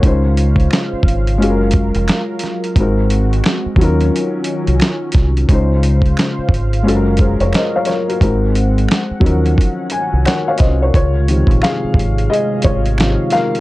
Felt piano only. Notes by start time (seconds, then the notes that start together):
Already playing: A#4 C#5
0.01 G#3 C#4 D#4
0.05 F4 C5
1.38 G#3 C#4 F4
1.42 F#4 G#4
1.50 A#4
2.77 G#3 C4 D#4 F#4 A#4
3.77 F#3 C#4 D#4 F4
3.83 A#4
5.48 G#3 C#4 D#4 F4
5.53 C5
6.83 G#3 C#4 F4
6.87 F#4 A4
6.95 A#4
7.20 G#4 C5
7.41 A#4 C#5
7.55 C5 D#5
7.76 C#5 F5
7.87 A#4 C#5
8.09 F#4 A#4
8.21 G#3 C4 D#4 F#4 A#4
9.20 F#3 C#4 D#4
9.24 F3 A#4
9.91 G#5
10.26 A#4 C#5 F#5
10.48 C#5 F5
10.58 C5 D#5
10.82 A#4 C#5
10.95 F4 C#5
11.29 C3 D#3 F3
11.63 G#4 F5
12.30 G#4 D#5
12.64 F4 C#5
12.98 C3 D#3 F3
13.32 A#4 F5